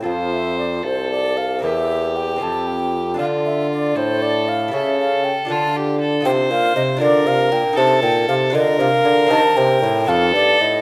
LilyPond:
<<
  \new Staff \with { instrumentName = "Flute" } { \time 6/8 \key f \major \tempo 4. = 78 f''8 e''8 d''8 c''8 d''8 f''8 | e''4 g''8 a''8 g''4 | f''8 e''8 d''8 c''8 d''8 f''8 | e''8 f''8 g''8 a''8 r4 |
\key bes \major g''8 f''8 ees''8 d''8 f''8 g''8 | a''8 g''8 f''8 ees''8 f''4 | a''8 g''4 f''8 d''8 ees''8 | }
  \new Staff \with { instrumentName = "Violin" } { \time 6/8 \key f \major c''4. a'4. | g'2. | f'4. a'4. | a'4. f'8 g'8 a'8 |
\key bes \major c''4. bes'4. | a'4. bes'4.~ | bes'4. a'4. | }
  \new Staff \with { instrumentName = "Lute" } { \time 6/8 \key f \major <c' f' a'>2. | <c' g' bes'>4. <c' f' a'>4. | <d' f' a'>2. | <e' g' a'>4. <d' f' a'>4. |
\key bes \major <ees' f' a'>4. <d' f' bes'>4. | <ees' a'>4. <d' f' bes'>4. | <c' ees' g'>4. <c' ees' a'>4. | }
  \new Staff \with { instrumentName = "Lute" } { \clef bass \time 6/8 \key f \major f,4. r4. | e,4. f,4. | d4. a,4. | cis4. d4. |
\key bes \major c8 bes,8 c8 d8 c8 bes,8 | c8 bes,8 c8 d8 c8 d8 | ees8 c8 a,8 f,8 g,8 a,8 | }
  \new Staff \with { instrumentName = "Bassoon" } { \clef bass \time 6/8 \key f \major f,4. c,4. | e,4. f,4. | d4. a,4. | cis4. d4. |
\key bes \major c8 bes,8 c8 d8 c8 bes,8 | c8 bes,8 c8 d8 c8 d8 | ees8 c8 a,8 f,8 g,8 a,8 | }
>>